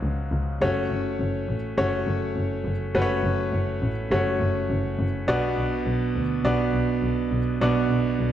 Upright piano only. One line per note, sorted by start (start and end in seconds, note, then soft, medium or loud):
0.00 0.63 C#3 medium
0.00 0.63 F3 medium
0.00 0.63 G#3 medium
0.00 0.63 F4 medium
0.00 0.61 F#4 medium
0.61 1.55 A3 medium
0.61 1.55 C#4 medium
0.61 1.54 F#4 medium
0.61 1.55 C#5 medium
1.78 2.71 A3 medium
1.78 2.71 C#4 medium
1.78 2.71 F#4 medium
1.78 2.71 C#5 medium
2.95 3.88 A3 medium
2.95 3.88 C#4 medium
2.95 3.88 F#4 medium
2.95 3.01 B4 medium
3.02 3.91 C#5 medium
4.11 5.04 A3 medium
4.11 5.04 C#4 medium
4.11 5.04 F#4 medium
4.11 5.04 C#5 medium
5.28 6.11 B2 medium
5.28 6.21 B3 medium
5.28 6.21 D4 medium
5.28 6.21 F#4 medium
5.28 6.21 D5 loud
6.45 7.37 B3 medium
6.45 7.38 D4 medium
6.45 7.38 F#4 medium
6.45 7.37 D5 medium
7.61 8.32 B2 medium
7.61 8.32 B3 medium
7.61 8.32 D4 medium
7.61 8.32 F#4 medium
7.61 8.32 D5 medium